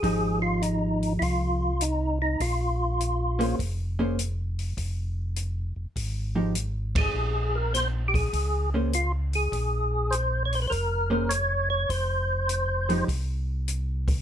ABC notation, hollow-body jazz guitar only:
X:1
M:4/4
L:1/8
Q:"Swing" 1/4=101
K:Fm
V:1 name="Hollow-body jazz guitar"
[F,A,EG]4- [F,A,EG] z3 | z3 [B,DAc] z [B,DAc] z2 | z4 z [F,A,EG] z2 | z4 z [B,DAc] z2 |
z4 z [B,DAc] z2 | z3 [F,A,EG] z4 |]